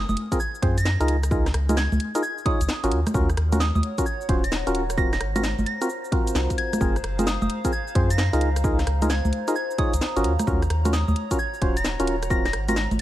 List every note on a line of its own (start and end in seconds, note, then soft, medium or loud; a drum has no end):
0.09 0.15 F#1 loud
0.09 0.14 D#6 medium
0.09 high conga medium
0.09 cabasa soft
0.17 closed hi-hat loud
0.32 0.39 C4 loud
0.32 0.39 F4 medium
0.32 0.39 G#4 medium
0.32 0.39 A#4 loud
0.32 kick medium
0.32 closed hi-hat medium
0.32 cabasa medium
0.40 0.58 G#6 medium
0.40 cabasa medium
0.55 cabasa soft
0.62 0.96 F#2 medium
0.62 0.77 C4 medium
0.62 0.77 F4 medium
0.62 0.77 G#4 medium
0.62 0.77 C5 medium
0.62 kick loud
0.62 closed hi-hat loud
0.78 0.84 A#6 medium
0.78 closed hi-hat medium
0.78 cabasa medium
0.85 1.04 A#6 medium
0.85 snare loud
0.85 cabasa soft
1.00 1.52 C#2 loud
1.00 1.17 D#4 medium
1.00 1.17 F4 medium
1.00 1.17 G#4 medium
1.00 1.17 A#4 loud
1.00 closed hi-hat medium
1.00 cabasa soft
1.08 closed hi-hat loud
1.23 cross-stick medium
1.23 closed hi-hat medium
1.23 cabasa medium
1.31 1.46 D#4 medium
1.31 1.46 F4 medium
1.31 1.46 G#4 medium
1.31 1.46 A#4 loud
1.31 kick loud
1.31 cabasa soft
1.46 cross-stick medium
1.46 snare medium
1.46 closed hi-hat soft
1.46 cabasa soft
1.54 1.88 C#2 loud
1.54 cross-stick medium
1.54 closed hi-hat loud
1.69 1.77 D#4 medium
1.69 1.77 F4 medium
1.69 1.77 G#4 medium
1.69 1.77 A#4 medium
1.69 closed hi-hat medium
1.69 high conga medium
1.69 cabasa medium
1.77 1.96 G#6 loud
1.77 snare loud
1.77 cabasa medium
1.92 1.99 C#2 loud
1.92 high conga medium
1.92 cabasa soft
2.00 closed hi-hat loud
2.15 2.23 D#4 loud
2.15 2.23 F4 medium
2.15 2.23 G#4 medium
2.15 2.23 A#4 loud
2.15 closed hi-hat medium
2.15 cabasa medium
2.23 2.41 G#6 medium
2.23 cabasa medium
2.38 cabasa soft
2.46 2.60 D#4 medium
2.46 2.60 F4 medium
2.46 2.60 G#4 medium
2.46 2.60 C#5 medium
2.46 2.91 D#6 medium
2.46 kick loud
2.46 closed hi-hat loud
2.61 2.67 C#2 medium
2.61 closed hi-hat medium
2.61 cabasa medium
2.69 snare loud
2.69 cabasa medium
2.84 2.93 G#1 medium
2.84 3.00 C#4 medium
2.84 3.00 F4 medium
2.84 3.00 F#4 medium
2.84 3.00 A#4 loud
2.84 closed hi-hat medium
2.84 cabasa soft
2.92 3.04 D#2 medium
2.92 4.98 C#5 medium
2.92 closed hi-hat loud
3.07 cross-stick medium
3.07 closed hi-hat medium
3.07 high conga medium
3.07 cabasa medium
3.14 3.35 D#2 medium
3.14 3.29 C#4 medium
3.14 3.29 F4 medium
3.14 3.29 F#4 medium
3.14 3.29 A#4 loud
3.14 kick loud
3.14 cabasa medium
3.30 cross-stick medium
3.30 closed hi-hat soft
3.30 cabasa soft
3.37 3.71 D#2 medium
3.37 cross-stick medium
3.37 closed hi-hat loud
3.52 3.60 C#4 medium
3.52 3.60 F4 medium
3.52 3.60 F#4 medium
3.52 3.60 A#4 medium
3.52 4.98 F#5 medium
3.52 closed hi-hat medium
3.52 high conga medium
3.52 cabasa medium
3.60 3.70 D#6 medium
3.60 snare loud
3.60 cabasa medium
3.75 3.82 D#2 loud
3.75 3.80 D#6 medium
3.75 high conga medium
3.75 cabasa soft
3.83 13.02 A#5 medium
3.83 closed hi-hat loud
3.98 4.06 C#4 loud
3.98 4.06 F4 medium
3.98 4.06 F#4 medium
3.98 4.06 A#4 loud
3.98 kick medium
3.98 closed hi-hat medium
3.98 cabasa medium
4.06 4.24 G#6 medium
4.06 cabasa medium
4.21 cabasa soft
4.29 4.63 D#1 medium
4.29 4.44 C#4 medium
4.29 4.44 F4 medium
4.29 4.44 F#4 medium
4.29 4.44 C5 loud
4.29 kick loud
4.29 closed hi-hat loud
4.44 4.50 A#6 medium
4.44 closed hi-hat medium
4.44 cabasa medium
4.52 snare loud
4.52 cabasa soft
4.67 5.22 D#1 loud
4.67 4.83 C#4 medium
4.67 4.83 F4 medium
4.67 4.83 F#4 medium
4.67 4.83 A#4 loud
4.67 closed hi-hat medium
4.67 cabasa soft
4.75 closed hi-hat loud
4.90 cross-stick medium
4.90 closed hi-hat medium
4.90 cabasa medium
4.97 5.12 C4 medium
4.97 5.12 F4 medium
4.97 5.12 F#4 medium
4.97 5.12 A#4 loud
4.97 10.24 C5 medium
4.97 5.07 A#6 medium
4.97 kick loud
4.97 cabasa medium
5.13 5.18 A#6 medium
5.13 cross-stick medium
5.13 snare medium
5.13 closed hi-hat soft
5.13 cabasa soft
5.20 5.54 G#1 loud
5.20 cross-stick medium
5.20 closed hi-hat loud
5.36 5.43 C4 medium
5.36 5.43 F4 medium
5.36 5.43 F#4 medium
5.36 5.43 A#4 medium
5.36 5.41 A#6 medium
5.36 closed hi-hat medium
5.36 high conga medium
5.36 cabasa medium
5.43 5.53 A#6 medium
5.43 snare loud
5.43 cabasa medium
5.59 5.65 G#1 loud
5.59 10.24 F5 medium
5.59 high conga medium
5.59 cabasa soft
5.66 5.85 A#6 medium
5.66 closed hi-hat loud
5.81 5.89 C4 loud
5.81 5.89 F4 medium
5.81 5.89 F#4 medium
5.81 5.89 A#4 loud
5.81 closed hi-hat medium
5.81 cabasa medium
5.89 cabasa medium
6.04 cabasa soft
6.12 6.79 C4 medium
6.12 6.79 F4 medium
6.12 6.79 F#4 medium
6.12 6.79 A#4 loud
6.12 kick loud
6.12 closed hi-hat loud
6.27 closed hi-hat medium
6.27 cabasa medium
6.35 6.48 C2 loud
6.35 snare loud
6.35 cabasa medium
6.50 kick medium
6.50 closed hi-hat medium
6.50 cabasa soft
6.58 6.87 G#6 medium
6.58 closed hi-hat loud
6.73 cross-stick medium
6.73 closed hi-hat medium
6.73 high conga medium
6.73 cabasa medium
6.81 7.01 F#1 medium
6.81 6.96 C4 medium
6.81 6.96 F4 medium
6.81 6.96 G#4 medium
6.81 6.96 A#4 loud
6.81 kick loud
6.81 cabasa medium
6.96 cross-stick medium
6.96 closed hi-hat soft
6.96 cabasa soft
7.04 7.38 F#1 loud
7.04 cross-stick medium
7.04 closed hi-hat loud
7.19 7.26 C4 medium
7.19 7.26 F4 medium
7.19 7.26 G#4 medium
7.19 7.26 A#4 medium
7.19 closed hi-hat medium
7.19 high conga medium
7.19 cabasa medium
7.27 7.36 D#6 medium
7.27 snare loud
7.27 cabasa medium
7.42 7.48 F#1 loud
7.42 7.47 D#6 medium
7.42 high conga medium
7.42 cabasa soft
7.50 closed hi-hat loud
7.65 7.72 C4 loud
7.65 7.72 F4 medium
7.65 7.72 G#4 medium
7.65 7.72 A#4 loud
7.65 kick medium
7.65 closed hi-hat medium
7.65 cabasa medium
7.73 7.91 G#6 medium
7.73 cabasa medium
7.88 cabasa soft
7.95 8.29 F#2 medium
7.95 8.10 C4 medium
7.95 8.10 F4 medium
7.95 8.10 G#4 medium
7.95 8.10 C5 loud
7.95 kick loud
7.95 closed hi-hat loud
8.10 8.17 A#6 medium
8.10 closed hi-hat medium
8.10 cabasa medium
8.18 8.37 A#6 medium
8.18 snare loud
8.18 cabasa medium
8.33 8.85 C#2 loud
8.33 8.50 D#4 medium
8.33 8.50 F4 medium
8.33 8.50 G#4 medium
8.33 8.50 A#4 loud
8.33 closed hi-hat medium
8.33 cabasa soft
8.41 closed hi-hat loud
8.56 cross-stick medium
8.56 closed hi-hat medium
8.56 cabasa medium
8.64 8.79 D#4 medium
8.64 8.79 F4 medium
8.64 8.79 G#4 medium
8.64 8.79 A#4 loud
8.64 kick loud
8.64 cabasa medium
8.79 cross-stick medium
8.79 snare medium
8.79 closed hi-hat soft
8.79 cabasa soft
8.87 9.21 C#2 loud
8.87 cross-stick medium
8.87 closed hi-hat loud
9.02 9.10 D#4 medium
9.02 9.10 F4 medium
9.02 9.10 G#4 medium
9.02 9.10 A#4 medium
9.02 closed hi-hat medium
9.02 high conga medium
9.02 cabasa medium
9.10 9.28 G#6 medium
9.10 snare loud
9.10 cabasa medium
9.25 9.31 C#2 loud
9.25 high conga medium
9.25 cabasa soft
9.33 closed hi-hat loud
9.48 9.55 D#4 loud
9.48 9.55 F4 medium
9.48 9.55 G#4 medium
9.48 9.55 A#4 loud
9.48 closed hi-hat medium
9.48 cabasa medium
9.56 9.74 G#6 medium
9.56 cabasa medium
9.71 cabasa soft
9.78 9.93 D#4 medium
9.78 9.93 F4 medium
9.78 9.93 G#4 medium
9.78 9.93 C#5 loud
9.78 10.24 D#6 loud
9.78 kick loud
9.78 closed hi-hat loud
9.94 10.00 C#2 medium
9.94 closed hi-hat medium
9.94 cabasa medium
10.01 snare loud
10.01 cabasa medium
10.16 10.26 G#1 medium
10.16 10.33 C#4 medium
10.16 10.33 F4 medium
10.16 10.33 F#4 medium
10.16 10.33 A#4 loud
10.16 closed hi-hat medium
10.16 cabasa soft
10.24 10.37 D#2 medium
10.24 12.30 C#5 medium
10.24 closed hi-hat loud
10.39 cross-stick medium
10.39 closed hi-hat medium
10.39 high conga medium
10.39 cabasa medium
10.47 10.67 D#2 loud
10.47 10.62 C#4 medium
10.47 10.62 F4 medium
10.47 10.62 F#4 medium
10.47 10.62 A#4 loud
10.47 kick loud
10.47 cabasa medium
10.62 cross-stick medium
10.62 closed hi-hat soft
10.62 cabasa soft
10.70 11.04 D#2 loud
10.70 cross-stick medium
10.70 closed hi-hat loud
10.85 10.93 C#4 medium
10.85 10.93 F4 medium
10.85 10.93 F#4 medium
10.85 10.93 A#4 medium
10.85 closed hi-hat medium
10.85 high conga medium
10.85 cabasa medium
10.93 11.03 D#6 medium
10.93 snare loud
10.93 cabasa medium
11.08 11.15 D#2 loud
11.08 11.13 D#6 medium
11.08 high conga medium
11.08 cabasa soft
11.12 12.30 F#5 medium
11.12 closed hi-hat loud
11.31 11.39 C#4 loud
11.31 11.39 F4 medium
11.31 11.39 F#4 medium
11.31 11.39 A#4 loud
11.31 kick medium
11.31 closed hi-hat medium
11.31 cabasa medium
11.39 11.57 G#6 loud
11.39 cabasa medium
11.54 cabasa soft
11.62 11.96 D#1 medium
11.62 11.76 C#4 medium
11.62 11.76 F4 medium
11.62 11.76 F#4 medium
11.62 11.76 C5 loud
11.62 kick loud
11.62 closed hi-hat loud
11.77 11.83 A#6 medium
11.77 closed hi-hat medium
11.77 cabasa medium
11.85 snare loud
11.85 cabasa medium
12.00 12.55 D#1 loud
12.00 12.16 C#4 medium
12.00 12.16 F4 medium
12.00 12.16 F#4 medium
12.00 12.16 A#4 loud
12.00 closed hi-hat medium
12.00 cabasa soft
12.07 closed hi-hat loud
12.23 cross-stick medium
12.23 closed hi-hat medium
12.23 cabasa medium
12.30 12.45 C4 medium
12.30 12.45 F4 medium
12.30 12.45 F#4 medium
12.30 12.45 A#4 loud
12.30 13.02 C5 medium
12.30 12.40 A#6 medium
12.30 kick loud
12.30 cabasa medium
12.45 12.51 A#6 medium
12.45 cross-stick medium
12.45 snare medium
12.45 closed hi-hat soft
12.45 cabasa soft
12.53 12.87 G#1 loud
12.53 cross-stick medium
12.53 closed hi-hat loud
12.68 12.76 C4 medium
12.68 12.76 F4 medium
12.68 12.76 F#4 medium
12.68 12.76 A#4 medium
12.68 12.74 A#6 medium
12.68 closed hi-hat medium
12.68 high conga medium
12.68 cabasa medium
12.76 snare loud
12.76 cabasa medium
12.91 12.98 G#1 loud
12.91 closed hi-hat soft
12.91 high conga medium
12.91 cabasa soft